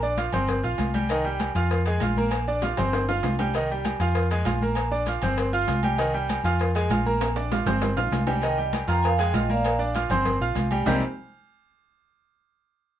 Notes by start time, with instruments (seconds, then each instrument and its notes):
Already playing: fingered electric bass A#1
0.02 grand piano D4 D5 D6, high conga, maracas
0.17 grand piano F4 F5 F6, cowbell, high conga, low timbale, low agogo, maracas
0.32 fingered electric bass G1, grand piano C4 C5 C6, cowbell, high conga, low conga, low agogo, maracas
0.47 cowbell, high conga, low conga, maracas
0.62 fingered electric bass A#1, grand piano F4 F5 F6, high conga, maracas
0.78 fingered electric bass C2, cowbell, high conga, low timbale, low agogo, maracas
0.93 grand piano G3 G4 G5, high conga, low agogo, maracas
1.09 grand piano D#3 D#4 D#5, cowbell, high conga, low agogo, maracas
1.24 grand piano G3 G4 G5, high conga, maracas
1.39 cowbell, high conga, low timbale, low agogo, maracas
1.55 fingered electric bass F2, grand piano F4 F5 F6, cowbell, high conga, low agogo, maracas
1.71 cowbell, high conga, maracas
1.86 grand piano G#3 G#4 G#5, cowbell, high conga, low agogo, maracas
2.00 fingered electric bass A#1, grand piano F4 F5 F6, cowbell, high conga, low timbale, low agogo, maracas
2.17 grand piano A#3 A#4 A#5, high conga, maracas
2.31 cowbell, high conga, low agogo, maracas
2.47 grand piano D4 D5 D6, high conga, maracas
2.62 grand piano F4 F5 F6, cowbell, high bongo, high conga, low timbale, low agogo, maracas
2.77 fingered electric bass G1, grand piano C4 C5 C6, cowbell, high bongo, high conga, low conga, low agogo, maracas
2.93 cowbell, low bongo, high conga, maracas
3.08 grand piano F4 F5 F6, low bongo, high conga, maracas
3.23 fingered electric bass C2, cowbell, low bongo, high conga, low timbale, low agogo, maracas
3.39 grand piano G3 G4 G5, low bongo, high conga, low agogo, maracas
3.54 grand piano D#3 D#4 D#5, cowbell, high conga, low agogo, maracas
3.69 grand piano G3 G4 G5, high conga, maracas
3.84 cowbell, high conga, low timbale, low agogo, maracas
4.00 fingered electric bass F2, grand piano F4 F5 F6, cowbell, high conga, low agogo, maracas
4.15 cowbell, high conga, maracas
4.31 grand piano G#3 G#4 G#5, cowbell, high conga, low agogo, maracas
4.45 fingered electric bass A#1, grand piano F4 F5 F6, cowbell, high conga, low timbale, low agogo, maracas
4.61 grand piano A#3 A#4 A#5, high conga, maracas
4.75 cowbell, low agogo, maracas
4.91 grand piano D4 D5 D6, high conga, maracas
5.06 grand piano F4 F5 F6, cowbell, high conga, low timbale, low agogo, maracas
5.22 fingered electric bass G1, grand piano C4 C5 C6, cowbell, high conga, low conga, low agogo, maracas
5.37 cowbell, high conga, maracas
5.53 grand piano F4 F5 F6, high conga, maracas
5.67 fingered electric bass C2, cowbell, high conga, low timbale, low agogo, maracas
5.83 grand piano G3 G4 G5, high conga, low agogo, maracas
5.98 grand piano D#3 D#4 D#5, cowbell, high conga, low agogo, maracas
6.14 grand piano G3 G4 G5, high conga, maracas
6.29 cowbell, high conga, low timbale, low agogo, maracas
6.44 fingered electric bass F2, grand piano F4 F5 F6, cowbell, high conga, low agogo, maracas
6.59 cowbell, high conga, maracas
6.75 grand piano G#3 G#4 G#5, cowbell, high conga, low agogo, maracas
6.89 fingered electric bass A#1, grand piano F4 F5 F6, cowbell, high conga, low timbale, low agogo, maracas
7.06 grand piano A#3 A#4 A#5, high conga, maracas
7.21 cowbell, high conga, high timbale, low agogo, maracas
7.36 grand piano D4 D5 D6, high conga, high timbale, maracas
7.51 grand piano F4 F5 F6, cowbell, high bongo, high conga, low timbale, low agogo, maracas
7.66 fingered electric bass G1, grand piano C4 C5 C6, cowbell, high bongo, high conga, low conga, low timbale, low agogo, maracas
7.82 cowbell, high bongo, low timbale, maracas
7.97 fingered electric bass A#1, grand piano F4 F5 F6, low bongo, high conga, low timbale, maracas
8.12 fingered electric bass C2, cowbell, low bongo, high conga, low timbale, low agogo, maracas
8.27 grand piano G3 G4 G5, low bongo, high conga, low timbale, low agogo, maracas
8.42 grand piano D#3 D#4 D#5, vibraphone D#5 G5, cowbell, low agogo, maracas
8.58 grand piano G3 G4 G5, high conga, maracas
8.73 cowbell, high conga, low timbale, low agogo, maracas
8.88 fingered electric bass F2, grand piano F4 F5 F6, vibraphone G5 A#5, cowbell, high conga, low agogo, maracas
9.02 vibraphone F5 G#5, cowbell, high conga, maracas
9.18 grand piano G#3 G#4 G#5, vibraphone D#5 G5, cowbell, high conga, low agogo, maracas
9.34 fingered electric bass A#1, grand piano F4 F5 F6, cowbell, high conga, low timbale, low agogo, maracas
9.49 grand piano A#3 A#4 A#5, vibraphone D5 F5, high conga, maracas
9.65 cowbell, high conga, low agogo, maracas
9.79 grand piano D4 D5 D6, high conga, maracas
9.95 grand piano F4 F5 F6, cowbell, high conga, low timbale, low agogo, maracas
10.09 fingered electric bass G1, grand piano C4 C5 C6, cowbell, high conga, low conga, low agogo, maracas
10.25 cowbell, high conga, low conga, maracas
10.40 fingered electric bass A#1, grand piano F4 F5 F6, high conga, maracas
10.55 fingered electric bass C2, cowbell, high conga, low timbale, low agogo, maracas
10.71 grand piano G3 G4 G5, high conga, low agogo, maracas
10.86 fingered electric bass C2, grand piano C3 G3 A#3 C4 D#4 G4, vibraphone C5, low bongo, low conga, low timbale, maracas